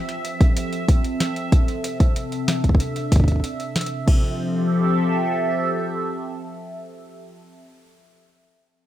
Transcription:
0.00 1.52 F3 medium
0.00 4.08 C4 medium
0.00 2.54 G4 medium
0.00 4.08 C5 medium
0.00 4.09 E5 medium
0.09 4.08 A4 medium
0.09 closed hi-hat soft
0.25 closed hi-hat medium
0.41 kick loud
0.41 closed hi-hat soft
0.57 closed hi-hat medium
0.73 closed hi-hat soft
0.88 kick loud
0.88 closed hi-hat medium
1.04 closed hi-hat soft
1.20 snare loud
1.20 closed hi-hat medium
1.36 closed hi-hat soft
1.52 4.08 C3 medium
1.52 kick loud
1.52 closed hi-hat medium
1.68 closed hi-hat soft
1.84 closed hi-hat medium
2.00 kick loud
2.00 closed hi-hat soft
2.16 closed hi-hat medium
2.32 4.08 D4 medium
2.32 closed hi-hat soft
2.48 snare loud
2.48 closed hi-hat medium
2.64 kick medium
2.64 closed hi-hat soft
2.69 kick medium
2.75 kick medium
2.80 closed hi-hat medium
2.96 closed hi-hat soft
3.12 kick medium
3.12 closed hi-hat medium
3.16 kick medium
3.20 kick medium
3.24 kick medium
3.28 kick soft
3.28 closed hi-hat soft
3.32 kick soft
3.36 kick soft
3.40 kick soft
3.44 closed hi-hat medium
3.60 closed hi-hat soft
3.76 snare loud
3.76 closed hi-hat medium
3.81 closed hi-hat medium
3.86 closed hi-hat medium
4.08 7.39 F3 medium
4.08 kick loud
4.08 crash medium
4.17 7.39 C4 medium
4.27 7.39 G4 medium
4.36 7.39 A4 medium
4.46 7.39 E5 medium

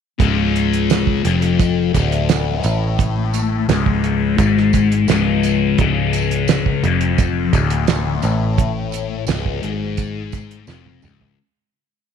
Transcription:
0.19 1.21 C#1 medium
0.19 1.24 C#2 loud
0.19 kick loud
0.19 closed hi-hat medium
0.19 tambourine soft
0.56 closed hi-hat medium
0.73 closed hi-hat medium
0.90 snare medium
0.90 closed hi-hat medium
0.90 tambourine loud
1.07 kick medium
1.24 1.91 F1 medium
1.24 1.93 F2 medium
1.24 closed hi-hat medium
1.42 closed hi-hat medium
1.59 kick loud
1.59 closed hi-hat medium
1.59 tambourine medium
1.93 2.61 D1 medium
1.93 2.63 D2 loud
1.93 kick medium
1.93 closed hi-hat medium
1.93 tambourine medium
2.12 closed hi-hat medium
2.29 snare loud
2.29 closed hi-hat medium
2.29 tambourine medium
2.63 3.65 A1 medium
2.63 3.67 A2 loud
2.63 closed hi-hat medium
2.63 tambourine medium
2.98 kick loud
2.98 closed hi-hat medium
2.98 tambourine soft
3.34 closed hi-hat medium
3.34 tambourine medium
3.68 4.35 C#1 loud
3.68 4.37 C#2 loud
3.68 snare medium
3.68 closed hi-hat medium
3.68 tambourine medium
3.86 kick medium
4.04 closed hi-hat medium
4.38 5.05 G#1 loud
4.38 5.07 G#2 loud
4.38 kick loud
4.38 closed hi-hat medium
4.38 tambourine medium
4.57 snare soft
4.73 kick medium
4.73 closed hi-hat medium
4.73 tambourine medium
4.92 closed hi-hat medium
5.08 5.74 C#1 medium
5.08 5.77 C#2 loud
5.08 snare loud
5.08 closed hi-hat medium
5.08 tambourine medium
5.43 closed hi-hat medium
5.43 tambourine medium
5.78 6.80 C#1 medium
5.78 6.83 C#2 loud
5.78 kick loud
5.78 closed hi-hat medium
5.78 tambourine soft
6.13 closed hi-hat medium
6.13 tambourine medium
6.31 closed hi-hat medium
6.48 snare loud
6.48 closed hi-hat medium
6.48 tambourine medium
6.66 kick medium
6.83 7.49 F1 medium
6.83 7.53 F2 medium
6.83 closed hi-hat medium
7.01 closed hi-hat medium
7.18 kick loud
7.18 closed hi-hat medium
7.18 tambourine medium
7.53 8.19 D1 loud
7.53 8.22 D2 loud
7.53 kick medium
7.53 closed hi-hat medium
7.53 tambourine medium
7.70 closed hi-hat medium
7.87 snare loud
7.87 closed hi-hat medium
7.87 tambourine medium
8.22 9.24 A1 medium
8.22 9.26 A2 loud
8.22 closed hi-hat medium
8.22 tambourine medium
8.57 kick loud
8.57 closed hi-hat medium
8.57 tambourine soft
8.92 closed hi-hat medium
8.92 tambourine medium
9.27 9.61 C#1 medium
9.27 9.61 C#2 loud
9.27 snare loud
9.27 closed hi-hat medium
9.27 tambourine medium
9.46 kick medium
9.62 10.64 G#1 medium
9.62 10.66 G#2 medium
9.62 closed hi-hat medium
9.97 kick loud
9.97 closed hi-hat medium
9.97 tambourine medium
10.32 kick medium
10.32 closed hi-hat medium
10.32 tambourine medium
10.51 closed hi-hat medium
10.67 11.01 F1 medium
10.67 11.02 F2 loud
10.67 snare medium
10.67 tambourine medium
10.86 high tom medium
11.02 11.36 C#1 medium
11.02 11.37 C#2 medium
11.02 mid tom medium
11.02 tambourine medium
11.21 floor tom medium

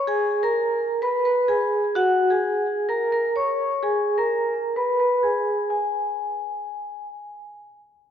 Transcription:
0.07 0.41 G#4 loud
0.07 0.41 G#5 medium
0.43 0.98 A#4 medium
0.43 0.98 A#5 medium
1.02 1.23 B4 medium
1.02 1.23 B5 medium
1.25 1.46 B4 medium
1.25 1.47 B5 medium
1.48 1.92 G#4 medium
1.48 1.93 G#5 medium
1.95 2.28 F#4 loud
1.95 2.29 F#5 medium
2.30 2.85 G#4 medium
2.30 2.86 G#5 medium
2.89 3.10 A#4 medium
2.89 3.10 A#5 medium
3.12 3.33 A#4 medium
3.12 3.34 A#5 medium
3.36 3.80 C#5 medium
3.36 3.80 C#6 medium
3.83 4.16 G#4 medium
3.83 4.16 G#5 medium
4.18 4.73 A#4 medium
4.18 4.73 A#5 medium
4.76 4.97 B4 medium
4.76 4.98 B5 medium
5.00 5.21 B4 medium
5.00 5.21 B5 medium
5.23 5.67 G#4 medium
5.23 5.68 G#5 medium
5.70 7.07 G#5 medium

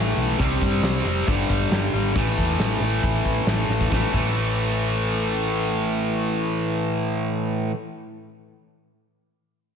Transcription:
0.00 0.13 A1 medium
0.00 0.37 A2 medium
0.00 0.38 E3 loud
0.00 0.38 E3 medium
0.00 0.38 A3 medium
0.00 0.39 A3 medium
0.17 0.35 B1 medium
0.17 open hi-hat soft
0.39 0.58 C2 loud
0.39 1.04 C3 medium
0.39 1.04 G3 medium
0.39 1.04 C4 medium
0.39 kick loud
0.39 open hi-hat medium
0.61 0.79 G2 medium
0.61 kick medium
0.61 open hi-hat medium
0.82 1.01 C2 medium
0.82 snare loud
0.82 open hi-hat medium
1.05 1.23 F1 medium
1.05 1.27 C3 medium
1.05 1.27 G3 medium
1.05 1.26 C4 medium
1.05 open hi-hat soft
1.27 1.45 G1 medium
1.27 1.92 G2 medium
1.27 1.93 D3 medium
1.27 kick loud
1.27 open hi-hat medium
1.32 1.93 G3 loud
1.49 1.67 G1 medium
1.49 kick medium
1.49 open hi-hat soft
1.70 1.89 G1 medium
1.70 snare loud
1.70 open hi-hat medium
1.93 2.11 G#1 medium
1.93 2.15 D3 medium
1.93 2.14 G3 medium
1.93 open hi-hat soft
1.98 2.16 G2 medium
2.15 2.34 A1 medium
2.15 2.80 A2 medium
2.15 2.81 E3 medium
2.15 2.80 A3 medium
2.15 kick loud
2.15 open hi-hat medium
2.38 2.56 E2 medium
2.38 kick medium
2.38 open hi-hat soft
2.58 2.77 A1 medium
2.58 snare loud
2.58 open hi-hat medium
2.80 2.99 A1 medium
2.80 3.47 E3 medium
2.80 3.46 A3 medium
2.80 open hi-hat soft
2.85 3.45 A2 medium
3.03 3.22 A1 medium
3.03 kick loud
3.03 open hi-hat medium
3.25 3.44 A1 medium
3.25 kick medium
3.25 open hi-hat soft
3.46 3.65 A1 medium
3.46 3.88 A2 medium
3.46 3.90 E3 medium
3.46 3.91 A3 medium
3.46 snare loud
3.46 open hi-hat medium
3.68 3.87 A1 medium
3.68 snare soft
3.81 kick medium
3.90 4.04 A1 medium
3.90 4.12 A2 medium
3.90 4.13 E3 medium
3.90 kick medium
3.90 snare medium
3.94 4.16 A3 medium
4.12 7.69 A1 medium
4.12 7.72 A2 medium
4.12 7.74 E3 medium
4.12 kick loud
4.12 crash medium
4.16 7.76 A3 medium

